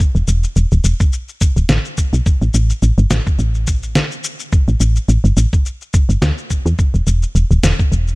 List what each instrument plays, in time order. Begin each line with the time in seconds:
0.00 kick, shaker
0.15 fm bass E1, shaker
0.28 fm bass E1, shaker
0.43 shaker
0.56 fm bass E1, shaker
0.72 fm bass D1, shaker
0.84 fm bass E1, shaker
1.00 kick, shaker
1.13 shaker
1.29 shaker
1.41 kick, shaker
1.56 fm bass D1, shaker
1.69 fm bass A1, snare, shaker
1.85 shaker
1.98 kick, shaker
2.13 fm bass B1, shaker
2.26 kick, shaker
2.42 fm bass A1, shaker
2.54 fm bass A1, shaker
2.70 shaker
2.82 fm bass A1, shaker
2.98 fm bass G1, shaker
3.11 fm bass A1, snare, shaker
3.26 kick, shaker
3.39 fm bass A1, shaker
3.55 shaker
3.67 kick, shaker
3.83 shaker
3.95 snare, shaker
4.11 shaker
4.24 shaker
4.39 shaker
4.52 kick, shaker
4.68 fm bass A1, shaker
4.80 fm bass A1, shaker
4.96 shaker
5.08 fm bass A1, shaker
5.24 fm bass G1, shaker
5.37 fm bass A1, shaker
5.53 kick, shaker
5.66 shaker
5.81 shaker
5.94 kick, shaker
6.09 fm bass G1, shaker
6.22 fm bass D2, snare, shaker
6.38 shaker
6.50 kick, shaker
6.66 fm bass E2, shaker
6.79 kick, shaker
6.94 fm bass E1, shaker
7.07 fm bass E1, shaker
7.22 shaker
7.35 fm bass E1, shaker
7.51 fm bass D1, shaker
7.63 fm bass E1, snare, shaker
7.79 kick, shaker
7.92 fm bass E1, shaker
8.08 shaker